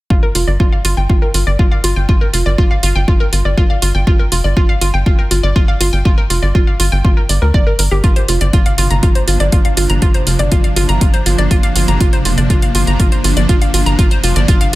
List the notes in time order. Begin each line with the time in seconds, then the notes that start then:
0.10 G1 F4, kick
0.23 A#4
0.35 F1 F4, open hi-hat
0.47 G1 D5
0.60 G1 F4, kick
0.72 F5
0.85 G1 F4, open hi-hat
0.97 G1 G5
1.09 G1 F4, kick
1.22 A#4
1.34 G1 F4, open hi-hat
1.47 G1 D5
1.59 G1 F4, kick
1.72 F5
1.84 G1 F4, open hi-hat
1.96 G1 G5
2.09 G1 F4, kick
2.21 A#4
2.33 F1 F4, open hi-hat
2.46 G1 D5
2.58 G1 F4, kick
2.71 F5
2.83 G1 F4, open hi-hat
2.95 G1 G5
3.08 G1 F4, kick
3.20 A#4
3.33 G1 F4, open hi-hat
3.45 G1 D5
3.57 G1 F4, kick
3.70 F5
3.82 G1 F4, open hi-hat
3.95 G1 G5
4.07 G1 F4, kick
4.19 A#4
4.32 F1 F4, open hi-hat
4.44 G1 D5
4.57 G1 F4, kick
4.69 F5
4.81 G1 F4, open hi-hat
4.94 G1 G5
5.06 G1 F4, kick
5.19 A#4
5.31 G1 F4, open hi-hat
5.43 G1 D5
5.56 G1 F4, kick
5.68 F5
5.81 G1 F4, open hi-hat
5.93 G1 G5
6.05 G1 F4, kick
6.18 A#4
6.30 F1 F4, open hi-hat
6.43 G1 D5
6.55 G1 F4, kick
6.67 F5
6.80 G1 F4, open hi-hat
6.92 G1 G5
7.04 G1 F4, kick
7.17 A#4
7.29 G1 D5, open hi-hat
7.42 D2 A#4
7.54 G1 D5, kick
7.67 A#4
7.79 G1 A#4, open hi-hat
7.91 G1 G4
8.04 G1 C3 F3 A#3 D4 F4, kick, closed hi-hat
8.16 C5, closed hi-hat
8.28 F1 F4, open hi-hat
8.41 G1 D5, closed hi-hat
8.53 G1 F4, kick, closed hi-hat
8.66 F5, closed hi-hat
8.78 G1 F4, open hi-hat
8.90 G1 A#5, closed hi-hat
9.03 G1 F4, kick, closed hi-hat
9.15 C5, closed hi-hat
9.28 G1 F4, open hi-hat
9.40 G1 D5, closed hi-hat
9.52 G1 F4, kick, closed hi-hat
9.65 F5, closed hi-hat
9.77 G1 F4, open hi-hat
9.90 G1 A#5, closed hi-hat
10.02 G1 F4, kick, closed hi-hat
10.14 C5, closed hi-hat
10.27 F1 F4, open hi-hat
10.39 G1 D5, closed hi-hat
10.52 G1 F4, kick, closed hi-hat
10.64 F5, closed hi-hat
10.76 G1 F4, open hi-hat
10.89 G1 A#5, closed hi-hat
11.01 G1 F4, kick, closed hi-hat
11.14 C5, closed hi-hat
11.26 G1 F4, open hi-hat
11.38 G1 D5, closed hi-hat
11.51 G1 F4, kick, closed hi-hat
11.63 F5, closed hi-hat
11.76 G1 F4, open hi-hat
11.88 G1 A#5, closed hi-hat
12.00 G1 F4, kick, closed hi-hat
12.13 C5, closed hi-hat
12.25 F1 F4, open hi-hat
12.38 G1 D5, closed hi-hat
12.50 G1 F4, kick, closed hi-hat
12.62 F5, closed hi-hat
12.75 G1 F4, open hi-hat
12.87 G1 A#5, closed hi-hat
13.00 G1 F4, kick, closed hi-hat
13.12 C5, closed hi-hat
13.24 G1 F4, open hi-hat
13.37 G1 D5, closed hi-hat
13.49 G1 F4, kick, closed hi-hat
13.62 F5, closed hi-hat
13.74 G1 F4, open hi-hat
13.86 G1 A#5, closed hi-hat
13.99 G1 F4, kick, closed hi-hat
14.11 C5, closed hi-hat
14.23 F1 F4, open hi-hat
14.36 G1 D5, closed hi-hat
14.48 G1 F4, kick, closed hi-hat
14.61 F5, closed hi-hat